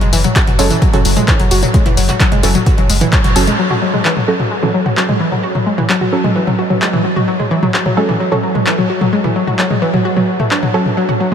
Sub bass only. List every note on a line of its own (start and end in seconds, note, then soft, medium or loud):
0.01 0.12 F#1 medium
0.13 0.24 F#1 loud
0.47 0.58 F#1 medium
0.59 0.70 F#1 loud
0.93 1.04 F#1 medium
1.05 1.16 F#1 loud
1.40 1.50 F#1 medium
1.51 1.62 F#1 loud
1.86 1.96 F#1 medium
1.97 2.08 F#1 loud
2.32 2.43 F#1 medium
2.43 2.55 F#1 loud
2.78 2.89 F#1 medium
2.90 3.01 F#1 loud
3.24 3.35 F#1 medium
3.36 3.47 F#1 loud